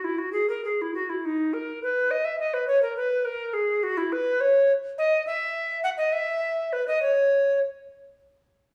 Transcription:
\new Staff \with { instrumentName = "Recorder" } { \time 6/8 \key b \major \tempo 4. = 69 e'16 fis'16 gis'16 ais'16 gis'16 e'16 fis'16 e'16 dis'8 ais'8 | b'8 dis''16 e''16 dis''16 b'16 cis''16 ais'16 b'8 ais'8 | gis'8 fis'16 e'16 b'8 cis''4 dis''8 | \key cis \minor e''4 fis''16 dis''16 e''4 b'16 dis''16 |
cis''4 r2 | }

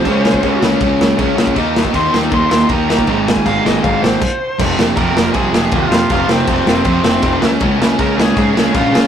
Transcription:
<<
  \new Staff \with { instrumentName = "Lead electric guitar" } { \time 4/4 \key f \minor \tempo 4 = 159 c''4. r2 r8 | r4 c'''8 r8 c'''8 c'''8 bes''8 bes''8 | bes''8 aes''8 f''8 ees''8 f''8 c''4. | r4 <bes' bes''>4 <aes' aes''>4 <f' f''>4 |
<f' f''>8 <c' c''>4. <c' c''>4. r8 | r4 <bes' bes''>8 <aes' aes''>4. <f' f''>4 | }
  \new Staff \with { instrumentName = "Overdriven electric guitar" } { \clef bass \time 4/4 \key f \minor <des aes des'>4. <des aes des'>4. <des aes des'>4 | <ees bes ees'>4. <ees bes ees'>4. <ees bes ees'>4 | <aes, ees aes>4. <aes, ees aes>4. r4 | r1 |
r1 | r1 | }
  \new Staff \with { instrumentName = "Distorted electric guitar" } { \clef bass \time 4/4 \key f \minor <des aes des'>4 <des aes des'>8 <des aes des'>8 <des aes des'>4 <des aes des'>8 <des aes des'>8 | <ees bes ees'>4 <ees bes ees'>8 <ees bes ees'>8 <ees bes ees'>4 <ees bes ees'>8 <ees bes ees'>8 | <aes, ees aes>4 <aes, ees aes>8 <aes, ees aes>8 <aes, ees aes>4 r4 | <f, c f>8 <f, c f>8 <f, c f>8 <f, c f>8 <f, c f>8 <f, c f>8 <f, c f>8 <f, c f>8 |
<f, c f>8 <f, c f>8 <f, c f>8 <f, c f>8 <f, c f>8 <f, c f>8 <f, c f>8 <des aes des'>8 | <des aes des'>8 <des aes des'>8 <des aes des'>8 <des aes des'>8 <des aes des'>8 <des aes des'>8 <des aes des'>8 <des aes des'>8 | }
  \new Staff \with { instrumentName = "Distorted electric guitar" } { \clef bass \time 4/4 \key f \minor <des aes des'>4 <des aes des'>8 <des aes des'>8 <des aes des'>4 <des aes des'>8 <des aes des'>8 | <ees bes ees'>4 <ees bes ees'>8 <ees bes ees'>8 <ees bes ees'>4 <ees bes ees'>8 <ees bes ees'>8 | <aes, ees aes>4 <aes, ees aes>8 <aes, ees aes>8 <aes, ees aes>4 r4 | <f, c f>8 <f, c f>8 <f, c f>8 <f, c f>8 <f, c f>8 <f, c f>8 <f, c f>8 <f, c f>8 |
<f, c f>8 <f, c f>8 <f, c f>8 <f, c f>8 <f, c f>8 <f, c f>8 <f, c f>8 <des aes des'>8 | <des aes des'>8 <des aes des'>8 <des aes des'>8 <des aes des'>8 <des aes des'>8 <des aes des'>8 <des aes des'>8 <des aes des'>8 | }
  \new Staff \with { instrumentName = "Picked electric bass" } { \clef bass \time 4/4 \key f \minor des,4 des,8 des,8 des,8 des,8 des,4 | ees,4 ees,8 ees,8 ees,8 ees,8 ees,4 | aes,,4 aes,,8 aes,,8 aes,,8 aes,,8 r4 | f,,8 f,,8 f,8 f,,8 c,8 f,,8 ees,8 f,8 |
f,,8 f,,8 f,,8 f,,8 f,8 f,,8 f,,8 des,8 | des,8 des,8 des8 des,8 aes,8 des,8 bes,,8 des8 | }
  \new DrumStaff \with { instrumentName = "Drums" } \drummode { \time 4/4 <cymc bd>8 sn16 bd16 <cymc bd>8 sn8 <cymc bd>8 sn8 <cymc bd>8 sn16 bd16 | <cymc bd>8 sn16 bd16 <cymc bd>8 sn8 <cymc bd>8 sn8 <cymc bd>8 sn16 bd16 | <cymc bd>8 sn16 bd16 <cymc bd>8 sn8 <cymc bd>8 sn8 <cymc bd>4 | <cymc bd>8 sn8 <cymc bd>8 sn8 <cymc bd>8 sn8 <cymc bd>8 sn8 |
<cymc bd>8 sn8 <cymc bd>8 sn8 <cymc bd>8 sn8 <cymc bd>8 sn8 | <cymc bd>8 sn8 <cymc bd>8 sn8 <cymc bd>8 sn8 <cymc bd>8 sn8 | }
>>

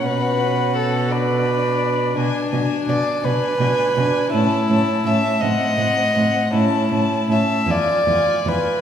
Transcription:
<<
  \new Staff \with { instrumentName = "Violin" } { \time 6/8 \key a \major \tempo 4. = 55 fis''4. d''4. | gis''8 gis''8 gis''8 gis''8 gis''8 gis''8 | a''8 a''8 a''8 fis''8 fis''8 fis''8 | a''8 a''8 a''8 gis''8 gis''8 gis''8 | }
  \new Staff \with { instrumentName = "Violin" } { \time 6/8 \key a \major b'4 a'8 b'4. | d'4 d''8 b'4. | e'4 e''8 ees''4. | e'4 e''8 d''4 b'8 | }
  \new Staff \with { instrumentName = "Viola" } { \time 6/8 \key a \major cis'4. d'4. | d'8 d'8 d'8 d'8 d'8 d'8 | cis'8 cis'8 cis'8 c'8 c'8 c'8 | cis'8 cis'8 cis'8 f'8 f'8 f'8 | }
  \new Staff \with { instrumentName = "Cello" } { \clef bass \time 6/8 \key a \major b,2. | b,8 b,8 b,8 b,8 b,8 b,8 | a,8 a,8 a,8 a,8 a,8 a,8 | a,8 a,8 a,8 e,8 e,8 e,8 | }
>>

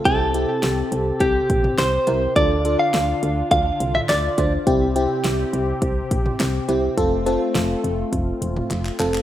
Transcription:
<<
  \new Staff \with { instrumentName = "Clean electric guitar" } { \time 4/4 \key c \mixolydian \tempo 4 = 104 a'2 g'4 c''4 | d''8. f''4~ f''16 f''8. e''16 d''8. r16 | r1 | r1 | }
  \new Staff \with { instrumentName = "FM electric piano" } { \time 4/4 \key c \mixolydian <c' e' g'>8 <c' e' g'>4~ <c' e' g'>16 r4. r16 <c' e' bes'>8 | <d' f' a'>8 <d' f' a'>4~ <d' f' a'>16 r4. r16 <d' f' c''>8 | <c' e' g'>8 <c' e' g'>4~ <c' e' g'>16 r4. r16 <c' e' g'>8 | <c' f' a'>8 <c' f' a'>4~ <c' f' a'>16 r4. r16 <c' f' a'>8 | }
  \new Staff \with { instrumentName = "Analog synth pad" } { \time 4/4 \key c \mixolydian <c c' g'>1 | <d d' f'>1 | <c c' g'>1 | <a f'>1 | }
  \new Staff \with { instrumentName = "FM bass" } { \clef bass \time 4/4 \key c \mixolydian c,4 c,8 c,8 c,8 bes,,8 c,8 c,8 | d,4 d,8 d,8 d,8 c,8 d,8 d,8 | c,4 c,8 c,8 c,8 bes,,8 c,8 c,8 | f,,4 f,,8 f,,8 f,,8 e,,8 f,,8 f,,8 | }
  \new DrumStaff \with { instrumentName = "Drums" } \drummode { \time 4/4 <hh bd>8 hh8 <hh sn>8 hh8 <hh bd>8 <hh bd>16 toml16 <hh sn>8 <cb hh>8 | <hh bd>8 hh8 <hh sn>8 hh8 <hh bd>8 hh16 toml16 <hh sn>8 <cb hh bd>8 | <hh bd>8 hh8 <hh sn>8 hh8 <hh bd>8 <hh bd>16 toml16 <hh sn>8 <cb hh>8 | <hh bd>8 <cb hh>8 <hh sn>8 hh8 <hh bd>8 hh16 toml16 <hc hh>16 hc16 <hc hh>16 hc16 | }
>>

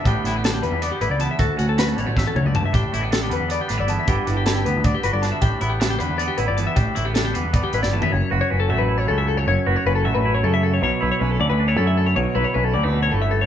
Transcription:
<<
  \new Staff \with { instrumentName = "Clean electric guitar" } { \time 7/8 \key fis \phrygian \tempo 4 = 156 g'8 e'16 g'16 a'16 g'16 b'8 d''16 g'16 b'16 d''16 a''16 e''16 | a'8 fis'16 a'16 b'16 a'16 cis''8 e''16 a'16 cis''16 d''16 a''16 e''16 | g'8 e'16 g'16 a'16 g'16 b'8 d''16 g'16 b'16 d''16 a''16 e''16 | g'8 e'16 g'16 a'16 g'16 b'8 d''16 g'16 b'16 d''16 a''16 e''16 |
g'8 e'16 g'16 a'16 g'16 b'8 d''16 g'16 b'16 d''16 a''16 e''16 | g'8 e'16 g'16 a'16 g'16 b'8 d''16 g'16 b'16 d''16 a''16 e''16 | cis''8 b'16 cis''16 b'16 a'16 e''16 b'8 cis''16 a'16 e''16 a'16 cis''16 | cis''8 b'16 cis''16 b'16 a'16 e''16 b'8 cis''16 a'16 e''16 a'16 cis''16 |
cis''8 b'16 cis''16 b'16 a'16 d''16 b'8 cis''16 a'16 e''16 a'16 cis''16 | cis''8 b'16 cis''16 b'16 a'16 d''16 b'8 cis''16 a'16 e''16 a'16 cis''16 | }
  \new Staff \with { instrumentName = "Clean electric guitar" } { \time 7/8 \key fis \phrygian << { <d g b d'>8 b8 d'8 g8 b8 e'8 b8 | fis'8 cis'8 fis'8 g16 a4.~ a16 | d'8 a16 b16 d'8 g8 b8 d'16 e'16 b8 | <d b d' e'>8 d'8 e'8 b8 d'8 fis'8 d'8 |
d'8 b8 d'8 g8 b8 e'8 b8 | d'8 a16 b16 d'8 g8 b8 e'8 a16 b16 | r8 fis'8 cis'8 a8 e'8 cis'4 | r8 fis'8 cis'8 a8 e'8 cis'4 |
r8 e'8 cis'8 a8 d'16 e'16 cis'4 | r8 e'8 cis'8 g16 a4.~ a16 | } \\ { a,4. d4. e,8 | d,4. d8 e,8 fis,8 g,8 | a,4. d4. e,8 | g,4. d4. d8 |
a,4. d4. e,8 | a,4. d4. e,8 | fis,4. fis4 cis4 | fis,4. fis4 cis4 |
b,4. d4 fis,4 | b,4. d8 b,8 a,8 g,8 | } >> }
  \new Staff \with { instrumentName = "Picked electric bass" } { \clef bass \time 7/8 \key fis \phrygian a,,16 r16 a,,4 e,16 e,8 r16 a,,16 cis,8 r16 | d,16 r16 d,4 a,,16 a,,8 r16 d,16 cis,8 r16 | a,,16 r16 a,,4 e,16 e,8 r16 a,,16 g,,8 r16 | g,,16 r16 g,,4 d,16 d,8 r16 g,,16 g,,8 r16 |
a,,16 r16 a,,4 e,16 e,8 r16 a,,16 g,,8 r16 | a,,16 r16 a,,4 e,16 e,8 r16 a,,16 g,,8 r16 | fis,,16 r16 fis,,16 r16 fis,,8 a,,16 a,,8. cis,4 | fis,,16 r16 fis,,16 r16 fis,,8 a,,16 a,,8. fis,4 |
b,,16 r16 b,,16 r16 b,,8 d,16 d,8. fis,4 | b,,16 r16 b,,16 r16 b,,8 d,16 d,8. g,,4 | }
  \new DrumStaff \with { instrumentName = "Drums" } \drummode { \time 7/8 <hh bd>8 <hh sn>8 <hh sn>8 hh8 hh8 hh8 hh8 | <hh bd>8 hh8 <hh sn>8 hh8 <bd sn>8 toml8 tomfh8 | <hh bd>8 hh8 <hh sn>8 hh8 hh8 <hh sn>8 hh8 | <hh bd>8 hh8 <hh sn>8 hh8 <hh bd>8 hh8 <hh sn>8 |
<hh bd>8 hh8 <hh sn>8 hh8 hh8 hh8 hh8 | <hh bd>8 hh8 <hh sn>8 hh8 <hh bd>8 hh16 sn8 tomfh16 | r4 r4 r4. | r4 r4 r4. |
r4 r4 r4. | r4 r4 r4. | }
>>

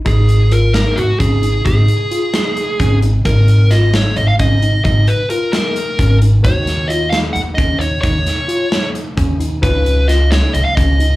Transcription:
<<
  \new Staff \with { instrumentName = "Lead electric guitar" } { \time 7/8 \key gis \dorian \tempo 4 = 132 gis'4 ais'8 ais'8 fis'8 gis'4 | gis'2. r8 | ais'4 dis''8 cis''8 dis''16 eis''16 dis''4 | dis''8 b'8 ais'8 ais'4. r8 |
cis''4 dis''8 eis''8 fis''8 dis''8 cis''8 | cis''2 r4. | b'4 dis''8 cis''8 dis''16 eis''16 dis''4 | }
  \new Staff \with { instrumentName = "Grand piano" } { \time 7/8 \key gis \dorian r2. r8 | r2. r8 | r2. r8 | r2. r8 |
<dis dis' fis' cis''>2.~ <dis dis' fis' cis''>8~ | <dis dis' fis' cis''>2.~ <dis dis' fis' cis''>8 | <cis cis' eis' b'>2.~ <cis cis' eis' b'>8 | }
  \new Staff \with { instrumentName = "Tine electric piano" } { \time 7/8 \key gis \dorian dis'4 eis'8 dis'4 cis'8 dis'8 | dis'4 eis'8 dis'4 cis'8 dis'8 | dis'4 eis'8 dis'4 cis'8 dis'8 | dis'4 eis'8 dis'4 cis'8 dis'8 |
dis'4 eis'8 dis'4 cis'8 dis'8 | dis'4 eis'8 dis'4 cis'8 dis'8 | dis'4 eis'8 dis'4 cis'8 dis'8 | }
  \new Staff \with { instrumentName = "Upright bass" } { \clef bass \time 7/8 \key gis \dorian gis,,2 gis,,16 r16 gis,,4 | gis,,8 r2 gis,,4 | gis,,2 gis,,16 r16 gis,,4 | gis,,8 r2 gis,,4 |
dis,2 dis,16 r16 dis,4 | dis,8 r2 dis,4 | cis,2 cis,16 r16 cis,4 | }
  \new DrumStaff \with { instrumentName = "Drums" } \drummode { \time 7/8 <hh bd>8 hh8 hh8 <hh sn>8 hh8 <hh bd>8 hh8 | <hh bd>8 hh8 hh8 <hh sn>8 hh8 <hh bd>8 hh8 | <hh bd>8 hh8 <hh sn>8 <hh sn>8 hh8 <hh bd>8 hh8 | <hh bd>8 hh8 hh8 <hh sn>8 hh8 <hh bd>8 hh8 |
<hh bd>8 <hh sn>8 hh8 <hh sn>8 hh8 <hh bd>8 hh8 | <hh bd>8 <hh sn>8 hh8 <hh sn>8 hh8 <hh bd>8 hh8 | <hh bd>8 hh8 <hh sn>8 <hh sn>8 hh8 <hh bd>8 hh8 | }
>>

